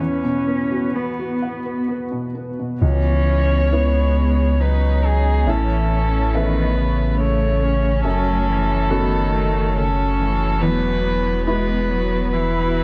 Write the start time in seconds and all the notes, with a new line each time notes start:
Already playing: B3 B4
0.00 E2 C#4 F#4
0.24 B2
0.47 B3
0.71 F#4
0.95 B3 B4
1.19 F#4
1.42 F#5
1.65 B4
1.88 B3
2.12 B2
2.35 B3
2.59 B2
2.82 C#2 E3 B3 C#4 C#5
3.71 G#3 B3 C#4 E4 B4
4.60 F#3 D#4 B4
5.06 G#4
5.47 A1 A2 E3 A3 C#4 A4
5.91 C#4
6.34 D#3 B3 C#4 A4 B4 E5
6.78 C#3
7.20 A3 C#5
7.63 C#4
8.04 F#1 F#2 F#3 F#4 A4 C#5
8.48 E3
8.90 D#3 B3 C#4 F#4 A4
9.34 A3
9.77 C#3 C#4 A4
10.20 E3
10.61 E1 E2 F#3 B3 B4
11.04 B3
11.46 G#3 E4 F#4 B4
11.90 F#3
12.32 E3 E4 B4